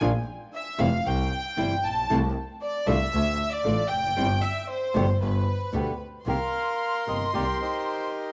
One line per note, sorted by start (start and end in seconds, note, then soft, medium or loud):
0.01 0.24 A#1 medium
0.01 0.10 F3 medium
0.01 0.11 A#3 medium
0.01 0.11 D4 loud
0.01 0.11 F4 loud
0.54 0.78 E5 medium
0.78 1.02 F1 loud
0.78 0.88 C3 medium
0.78 0.88 E3 medium
0.78 0.88 G3 medium
0.78 0.88 C4 medium
0.78 0.89 E4 loud
0.78 1.06 F5 medium
1.06 1.28 C2 medium
1.06 1.83 G5 medium
1.57 1.79 G1 medium
1.57 1.74 C3 medium
1.57 1.74 E3 medium
1.57 1.74 G3 medium
1.57 1.74 C4 medium
1.57 1.74 E4 medium
1.84 2.09 A#1 medium
1.84 2.10 A5 loud
2.10 2.31 C2 loud
2.10 2.19 C3 medium
2.10 2.19 E3 medium
2.10 2.19 A3 loud
2.10 2.19 C4 loud
2.10 2.19 E4 loud
2.61 2.85 D5 medium
2.87 3.09 C2 loud
2.87 2.96 D3 medium
2.87 2.96 A3 medium
2.87 2.96 D4 medium
2.87 2.97 F4 medium
2.87 3.52 E5 loud
3.13 3.35 D2 medium
3.51 3.90 D5 loud
3.64 3.86 A1 medium
3.64 3.81 D3 medium
3.64 3.81 A3 medium
3.64 3.82 D4 medium
3.64 3.82 F4 medium
3.88 4.16 F1 medium
3.88 4.41 G5 loud
4.16 4.38 G1 medium
4.16 4.25 G3 medium
4.16 4.26 C4 medium
4.16 4.26 E4 medium
4.42 4.68 E5 medium
4.69 5.18 C5 medium
4.95 5.17 G1 loud
4.95 5.04 B2 medium
4.95 5.04 D3 medium
4.95 5.04 G3 medium
4.95 5.05 B3 medium
4.95 5.04 G4 medium
5.21 5.43 G1 medium
5.21 6.01 B4 medium
5.73 5.95 D2 medium
5.73 5.90 B2 medium
5.73 5.91 D3 medium
5.73 5.91 G3 medium
5.73 5.91 B3 medium
5.73 5.91 G4 medium
6.25 6.49 C2 medium
6.25 6.36 C3 medium
6.25 6.36 D#3 medium
6.25 6.36 A#3 medium
6.25 6.36 C4 medium
6.25 6.36 G4 medium
6.25 7.31 A#4 medium
6.25 8.32 C6 medium
6.30 7.05 F5 medium
7.07 7.30 G1 soft
7.07 7.24 C3 soft
7.07 7.25 D#3 soft
7.07 7.25 A#3 soft
7.07 7.25 C4 medium
7.07 7.25 G4 soft
7.07 7.36 D#5 medium
7.33 7.57 C2 medium
7.33 7.43 C3 medium
7.33 7.43 D#3 medium
7.33 7.43 A#3 medium
7.33 7.43 C4 medium
7.33 7.43 G4 medium
7.33 7.61 G4 medium
7.33 8.32 A#4 medium
7.33 7.46 D5 medium
7.62 8.32 D#4 soft
7.62 8.32 G4 soft
7.62 8.11 C5 medium